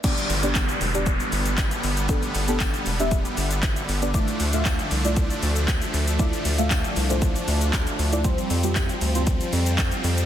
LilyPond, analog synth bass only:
\new Staff \with { instrumentName = "Analog synth bass" } { \clef bass \time 4/4 \key g \mixolydian \tempo 4 = 117 r8 g,,4 e,,4 g,,4 g,,8~ | g,,8 g,,4 e,,4 g,,4 g,,8~ | g,,8 d,4 c,4 d,4 d,8~ | d,8 d,4 c,4 d,4 d,8~ |
d,8 f,4 d,4 f,4 f,8 | }